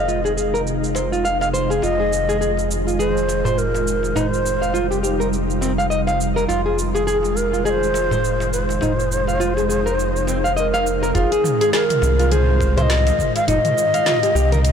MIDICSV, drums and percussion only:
0, 0, Header, 1, 3, 480
1, 0, Start_track
1, 0, Key_signature, -4, "minor"
1, 0, Tempo, 582524
1, 1506, Time_signature, 4, 2, 24, 8
1, 12129, End_track
2, 0, Start_track
2, 0, Title_t, "Darbuka"
2, 200, Note_on_c, 9, 63, 32
2, 213, Note_on_c, 9, 62, 49
2, 282, Note_off_c, 9, 63, 0
2, 295, Note_off_c, 9, 62, 0
2, 781, Note_on_c, 9, 63, 72
2, 863, Note_off_c, 9, 63, 0
2, 1159, Note_on_c, 9, 62, 30
2, 1164, Note_on_c, 9, 63, 64
2, 1242, Note_off_c, 9, 62, 0
2, 1247, Note_off_c, 9, 63, 0
2, 1403, Note_on_c, 9, 62, 53
2, 1485, Note_off_c, 9, 62, 0
2, 1502, Note_on_c, 9, 63, 58
2, 1584, Note_off_c, 9, 63, 0
2, 1886, Note_on_c, 9, 62, 52
2, 1968, Note_off_c, 9, 62, 0
2, 2121, Note_on_c, 9, 62, 47
2, 2203, Note_off_c, 9, 62, 0
2, 2708, Note_on_c, 9, 63, 64
2, 2790, Note_off_c, 9, 63, 0
2, 2840, Note_on_c, 9, 64, 86
2, 2846, Note_on_c, 9, 62, 52
2, 2923, Note_off_c, 9, 64, 0
2, 2928, Note_off_c, 9, 62, 0
2, 3086, Note_on_c, 9, 63, 68
2, 3168, Note_off_c, 9, 63, 0
2, 3321, Note_on_c, 9, 62, 61
2, 3403, Note_off_c, 9, 62, 0
2, 3424, Note_on_c, 9, 64, 73
2, 3429, Note_on_c, 9, 63, 64
2, 3506, Note_off_c, 9, 64, 0
2, 3512, Note_off_c, 9, 63, 0
2, 3808, Note_on_c, 9, 62, 57
2, 3890, Note_off_c, 9, 62, 0
2, 4050, Note_on_c, 9, 62, 49
2, 4132, Note_off_c, 9, 62, 0
2, 4631, Note_on_c, 9, 63, 67
2, 4713, Note_off_c, 9, 63, 0
2, 5005, Note_on_c, 9, 63, 61
2, 5006, Note_on_c, 9, 62, 29
2, 5087, Note_off_c, 9, 63, 0
2, 5089, Note_off_c, 9, 62, 0
2, 5258, Note_on_c, 9, 62, 58
2, 5340, Note_off_c, 9, 62, 0
2, 5349, Note_on_c, 9, 63, 68
2, 5432, Note_off_c, 9, 63, 0
2, 5730, Note_on_c, 9, 62, 62
2, 5812, Note_off_c, 9, 62, 0
2, 5958, Note_on_c, 9, 62, 49
2, 6040, Note_off_c, 9, 62, 0
2, 6543, Note_on_c, 9, 63, 79
2, 6625, Note_off_c, 9, 63, 0
2, 6683, Note_on_c, 9, 64, 83
2, 6686, Note_on_c, 9, 62, 65
2, 6766, Note_off_c, 9, 64, 0
2, 6768, Note_off_c, 9, 62, 0
2, 6925, Note_on_c, 9, 63, 73
2, 7007, Note_off_c, 9, 63, 0
2, 7161, Note_on_c, 9, 62, 68
2, 7243, Note_off_c, 9, 62, 0
2, 7258, Note_on_c, 9, 63, 68
2, 7267, Note_on_c, 9, 64, 73
2, 7341, Note_off_c, 9, 63, 0
2, 7350, Note_off_c, 9, 64, 0
2, 7641, Note_on_c, 9, 62, 57
2, 7724, Note_off_c, 9, 62, 0
2, 7887, Note_on_c, 9, 62, 53
2, 7969, Note_off_c, 9, 62, 0
2, 8465, Note_on_c, 9, 63, 65
2, 8548, Note_off_c, 9, 63, 0
2, 8845, Note_on_c, 9, 62, 37
2, 8851, Note_on_c, 9, 63, 78
2, 8928, Note_off_c, 9, 62, 0
2, 8933, Note_off_c, 9, 63, 0
2, 9087, Note_on_c, 9, 62, 55
2, 9169, Note_off_c, 9, 62, 0
2, 9566, Note_on_c, 9, 62, 61
2, 9648, Note_off_c, 9, 62, 0
2, 9801, Note_on_c, 9, 62, 58
2, 9883, Note_off_c, 9, 62, 0
2, 9904, Note_on_c, 9, 63, 67
2, 9987, Note_off_c, 9, 63, 0
2, 10524, Note_on_c, 9, 64, 90
2, 10528, Note_on_c, 9, 62, 70
2, 10606, Note_off_c, 9, 64, 0
2, 10610, Note_off_c, 9, 62, 0
2, 10767, Note_on_c, 9, 63, 80
2, 10850, Note_off_c, 9, 63, 0
2, 11008, Note_on_c, 9, 63, 72
2, 11010, Note_on_c, 9, 62, 73
2, 11090, Note_off_c, 9, 63, 0
2, 11093, Note_off_c, 9, 62, 0
2, 11108, Note_on_c, 9, 64, 83
2, 11191, Note_off_c, 9, 64, 0
2, 11345, Note_on_c, 9, 63, 36
2, 11428, Note_off_c, 9, 63, 0
2, 11487, Note_on_c, 9, 62, 67
2, 11569, Note_off_c, 9, 62, 0
2, 11722, Note_on_c, 9, 62, 52
2, 11804, Note_off_c, 9, 62, 0
2, 12129, End_track
3, 0, Start_track
3, 0, Title_t, "Drums"
3, 73, Note_on_c, 9, 69, 39
3, 155, Note_off_c, 9, 69, 0
3, 213, Note_on_c, 9, 69, 27
3, 295, Note_off_c, 9, 69, 0
3, 312, Note_on_c, 9, 69, 72
3, 395, Note_off_c, 9, 69, 0
3, 453, Note_on_c, 9, 69, 29
3, 536, Note_off_c, 9, 69, 0
3, 553, Note_on_c, 9, 69, 37
3, 635, Note_off_c, 9, 69, 0
3, 692, Note_on_c, 9, 69, 27
3, 775, Note_off_c, 9, 69, 0
3, 793, Note_on_c, 9, 69, 71
3, 875, Note_off_c, 9, 69, 0
3, 932, Note_on_c, 9, 69, 29
3, 1014, Note_off_c, 9, 69, 0
3, 1033, Note_on_c, 9, 69, 37
3, 1115, Note_off_c, 9, 69, 0
3, 1173, Note_on_c, 9, 69, 27
3, 1256, Note_off_c, 9, 69, 0
3, 1273, Note_on_c, 9, 69, 71
3, 1355, Note_off_c, 9, 69, 0
3, 1412, Note_on_c, 9, 69, 28
3, 1495, Note_off_c, 9, 69, 0
3, 1513, Note_on_c, 9, 69, 38
3, 1596, Note_off_c, 9, 69, 0
3, 1754, Note_on_c, 9, 69, 71
3, 1836, Note_off_c, 9, 69, 0
3, 1893, Note_on_c, 9, 69, 30
3, 1975, Note_off_c, 9, 69, 0
3, 1994, Note_on_c, 9, 69, 38
3, 2077, Note_off_c, 9, 69, 0
3, 2133, Note_on_c, 9, 69, 26
3, 2215, Note_off_c, 9, 69, 0
3, 2234, Note_on_c, 9, 69, 73
3, 2316, Note_off_c, 9, 69, 0
3, 2374, Note_on_c, 9, 69, 30
3, 2457, Note_off_c, 9, 69, 0
3, 2475, Note_on_c, 9, 69, 39
3, 2557, Note_off_c, 9, 69, 0
3, 2614, Note_on_c, 9, 69, 26
3, 2696, Note_off_c, 9, 69, 0
3, 2714, Note_on_c, 9, 69, 63
3, 2797, Note_off_c, 9, 69, 0
3, 2853, Note_on_c, 9, 69, 29
3, 2935, Note_off_c, 9, 69, 0
3, 2955, Note_on_c, 9, 69, 39
3, 3037, Note_off_c, 9, 69, 0
3, 3094, Note_on_c, 9, 69, 26
3, 3177, Note_off_c, 9, 69, 0
3, 3193, Note_on_c, 9, 69, 69
3, 3276, Note_off_c, 9, 69, 0
3, 3333, Note_on_c, 9, 69, 27
3, 3415, Note_off_c, 9, 69, 0
3, 3434, Note_on_c, 9, 69, 37
3, 3517, Note_off_c, 9, 69, 0
3, 3574, Note_on_c, 9, 69, 25
3, 3656, Note_off_c, 9, 69, 0
3, 3674, Note_on_c, 9, 69, 67
3, 3757, Note_off_c, 9, 69, 0
3, 3815, Note_on_c, 9, 69, 28
3, 3897, Note_off_c, 9, 69, 0
3, 3915, Note_on_c, 9, 69, 37
3, 3997, Note_off_c, 9, 69, 0
3, 4054, Note_on_c, 9, 69, 25
3, 4137, Note_off_c, 9, 69, 0
3, 4155, Note_on_c, 9, 69, 64
3, 4238, Note_off_c, 9, 69, 0
3, 4296, Note_on_c, 9, 69, 28
3, 4378, Note_off_c, 9, 69, 0
3, 4394, Note_on_c, 9, 69, 36
3, 4476, Note_off_c, 9, 69, 0
3, 4534, Note_on_c, 9, 69, 25
3, 4617, Note_off_c, 9, 69, 0
3, 4635, Note_on_c, 9, 69, 67
3, 4717, Note_off_c, 9, 69, 0
3, 4775, Note_on_c, 9, 69, 26
3, 4858, Note_off_c, 9, 69, 0
3, 4875, Note_on_c, 9, 69, 38
3, 4957, Note_off_c, 9, 69, 0
3, 5014, Note_on_c, 9, 69, 26
3, 5096, Note_off_c, 9, 69, 0
3, 5114, Note_on_c, 9, 69, 66
3, 5196, Note_off_c, 9, 69, 0
3, 5254, Note_on_c, 9, 69, 27
3, 5336, Note_off_c, 9, 69, 0
3, 5354, Note_on_c, 9, 69, 37
3, 5437, Note_off_c, 9, 69, 0
3, 5593, Note_on_c, 9, 69, 66
3, 5675, Note_off_c, 9, 69, 0
3, 5734, Note_on_c, 9, 69, 31
3, 5816, Note_off_c, 9, 69, 0
3, 5833, Note_on_c, 9, 69, 37
3, 5915, Note_off_c, 9, 69, 0
3, 5972, Note_on_c, 9, 69, 26
3, 6054, Note_off_c, 9, 69, 0
3, 6073, Note_on_c, 9, 69, 67
3, 6156, Note_off_c, 9, 69, 0
3, 6214, Note_on_c, 9, 69, 28
3, 6296, Note_off_c, 9, 69, 0
3, 6314, Note_on_c, 9, 69, 36
3, 6397, Note_off_c, 9, 69, 0
3, 6454, Note_on_c, 9, 69, 26
3, 6537, Note_off_c, 9, 69, 0
3, 6554, Note_on_c, 9, 69, 65
3, 6636, Note_off_c, 9, 69, 0
3, 6694, Note_on_c, 9, 69, 28
3, 6776, Note_off_c, 9, 69, 0
3, 6794, Note_on_c, 9, 69, 39
3, 6877, Note_off_c, 9, 69, 0
3, 6933, Note_on_c, 9, 69, 25
3, 7016, Note_off_c, 9, 69, 0
3, 7033, Note_on_c, 9, 69, 70
3, 7115, Note_off_c, 9, 69, 0
3, 7172, Note_on_c, 9, 69, 29
3, 7255, Note_off_c, 9, 69, 0
3, 7273, Note_on_c, 9, 69, 38
3, 7355, Note_off_c, 9, 69, 0
3, 7413, Note_on_c, 9, 69, 25
3, 7496, Note_off_c, 9, 69, 0
3, 7513, Note_on_c, 9, 69, 65
3, 7596, Note_off_c, 9, 69, 0
3, 7654, Note_on_c, 9, 69, 30
3, 7737, Note_off_c, 9, 69, 0
3, 7755, Note_on_c, 9, 69, 39
3, 7837, Note_off_c, 9, 69, 0
3, 7894, Note_on_c, 9, 69, 26
3, 7977, Note_off_c, 9, 69, 0
3, 7995, Note_on_c, 9, 69, 70
3, 8077, Note_off_c, 9, 69, 0
3, 8135, Note_on_c, 9, 69, 31
3, 8217, Note_off_c, 9, 69, 0
3, 8236, Note_on_c, 9, 69, 39
3, 8319, Note_off_c, 9, 69, 0
3, 8375, Note_on_c, 9, 69, 26
3, 8457, Note_off_c, 9, 69, 0
3, 8474, Note_on_c, 9, 69, 67
3, 8556, Note_off_c, 9, 69, 0
3, 8614, Note_on_c, 9, 69, 27
3, 8697, Note_off_c, 9, 69, 0
3, 8715, Note_on_c, 9, 69, 38
3, 8797, Note_off_c, 9, 69, 0
3, 8853, Note_on_c, 9, 69, 28
3, 8936, Note_off_c, 9, 69, 0
3, 8954, Note_on_c, 9, 69, 66
3, 9037, Note_off_c, 9, 69, 0
3, 9094, Note_on_c, 9, 69, 29
3, 9176, Note_off_c, 9, 69, 0
3, 9187, Note_on_c, 9, 36, 110
3, 9188, Note_on_c, 9, 42, 67
3, 9195, Note_on_c, 9, 69, 44
3, 9269, Note_off_c, 9, 36, 0
3, 9270, Note_off_c, 9, 42, 0
3, 9278, Note_off_c, 9, 69, 0
3, 9328, Note_on_c, 9, 42, 30
3, 9335, Note_on_c, 9, 69, 29
3, 9410, Note_off_c, 9, 42, 0
3, 9417, Note_off_c, 9, 69, 0
3, 9428, Note_on_c, 9, 45, 73
3, 9435, Note_on_c, 9, 69, 74
3, 9510, Note_off_c, 9, 45, 0
3, 9518, Note_off_c, 9, 69, 0
3, 9568, Note_on_c, 9, 42, 34
3, 9576, Note_on_c, 9, 69, 33
3, 9651, Note_off_c, 9, 42, 0
3, 9658, Note_off_c, 9, 69, 0
3, 9667, Note_on_c, 9, 38, 107
3, 9667, Note_on_c, 9, 42, 68
3, 9674, Note_on_c, 9, 69, 45
3, 9750, Note_off_c, 9, 38, 0
3, 9750, Note_off_c, 9, 42, 0
3, 9757, Note_off_c, 9, 69, 0
3, 9808, Note_on_c, 9, 42, 47
3, 9808, Note_on_c, 9, 45, 77
3, 9815, Note_on_c, 9, 69, 30
3, 9890, Note_off_c, 9, 42, 0
3, 9890, Note_off_c, 9, 45, 0
3, 9897, Note_off_c, 9, 69, 0
3, 9916, Note_on_c, 9, 69, 79
3, 9998, Note_off_c, 9, 69, 0
3, 10049, Note_on_c, 9, 42, 31
3, 10056, Note_on_c, 9, 69, 33
3, 10131, Note_off_c, 9, 42, 0
3, 10138, Note_off_c, 9, 69, 0
3, 10148, Note_on_c, 9, 42, 71
3, 10148, Note_on_c, 9, 45, 78
3, 10155, Note_on_c, 9, 69, 41
3, 10230, Note_off_c, 9, 42, 0
3, 10230, Note_off_c, 9, 45, 0
3, 10237, Note_off_c, 9, 69, 0
3, 10387, Note_on_c, 9, 36, 100
3, 10394, Note_on_c, 9, 69, 76
3, 10469, Note_off_c, 9, 36, 0
3, 10477, Note_off_c, 9, 69, 0
3, 10527, Note_on_c, 9, 42, 31
3, 10527, Note_on_c, 9, 45, 75
3, 10534, Note_on_c, 9, 69, 29
3, 10609, Note_off_c, 9, 42, 0
3, 10609, Note_off_c, 9, 45, 0
3, 10617, Note_off_c, 9, 69, 0
3, 10627, Note_on_c, 9, 38, 109
3, 10627, Note_on_c, 9, 42, 69
3, 10634, Note_on_c, 9, 69, 42
3, 10710, Note_off_c, 9, 38, 0
3, 10710, Note_off_c, 9, 42, 0
3, 10717, Note_off_c, 9, 69, 0
3, 10767, Note_on_c, 9, 42, 32
3, 10775, Note_on_c, 9, 69, 29
3, 10850, Note_off_c, 9, 42, 0
3, 10857, Note_off_c, 9, 69, 0
3, 10867, Note_on_c, 9, 36, 58
3, 10867, Note_on_c, 9, 45, 79
3, 10874, Note_on_c, 9, 69, 81
3, 10949, Note_off_c, 9, 36, 0
3, 10949, Note_off_c, 9, 45, 0
3, 10956, Note_off_c, 9, 69, 0
3, 11006, Note_on_c, 9, 42, 49
3, 11013, Note_on_c, 9, 69, 32
3, 11088, Note_off_c, 9, 42, 0
3, 11095, Note_off_c, 9, 69, 0
3, 11108, Note_on_c, 9, 42, 67
3, 11115, Note_on_c, 9, 69, 45
3, 11190, Note_off_c, 9, 42, 0
3, 11197, Note_off_c, 9, 69, 0
3, 11246, Note_on_c, 9, 42, 31
3, 11246, Note_on_c, 9, 45, 72
3, 11253, Note_on_c, 9, 69, 31
3, 11328, Note_off_c, 9, 42, 0
3, 11328, Note_off_c, 9, 45, 0
3, 11336, Note_off_c, 9, 69, 0
3, 11355, Note_on_c, 9, 69, 81
3, 11437, Note_off_c, 9, 69, 0
3, 11487, Note_on_c, 9, 42, 32
3, 11494, Note_on_c, 9, 69, 35
3, 11569, Note_off_c, 9, 42, 0
3, 11576, Note_off_c, 9, 69, 0
3, 11587, Note_on_c, 9, 38, 99
3, 11587, Note_on_c, 9, 42, 67
3, 11587, Note_on_c, 9, 45, 78
3, 11594, Note_on_c, 9, 69, 46
3, 11669, Note_off_c, 9, 38, 0
3, 11669, Note_off_c, 9, 42, 0
3, 11669, Note_off_c, 9, 45, 0
3, 11677, Note_off_c, 9, 69, 0
3, 11727, Note_on_c, 9, 42, 44
3, 11734, Note_on_c, 9, 69, 32
3, 11809, Note_off_c, 9, 42, 0
3, 11816, Note_off_c, 9, 69, 0
3, 11835, Note_on_c, 9, 69, 84
3, 11917, Note_off_c, 9, 69, 0
3, 11967, Note_on_c, 9, 42, 32
3, 11967, Note_on_c, 9, 45, 76
3, 11974, Note_on_c, 9, 69, 35
3, 12049, Note_off_c, 9, 42, 0
3, 12049, Note_off_c, 9, 45, 0
3, 12057, Note_off_c, 9, 69, 0
3, 12068, Note_on_c, 9, 42, 69
3, 12075, Note_on_c, 9, 69, 44
3, 12129, Note_off_c, 9, 42, 0
3, 12129, Note_off_c, 9, 69, 0
3, 12129, End_track
0, 0, End_of_file